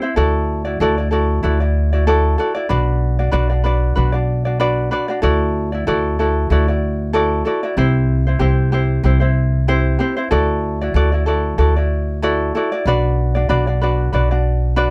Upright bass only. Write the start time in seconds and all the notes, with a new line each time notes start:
0.17 D2
0.80 D2
1.44 D2
2.70 B1
3.33 B1
3.97 B1
5.23 D2
5.88 D2
6.50 D2
7.77 C2
8.40 C2
9.03 C2
10.31 D2
10.94 D2
11.58 D2
12.86 B1
13.50 B1
14.13 B1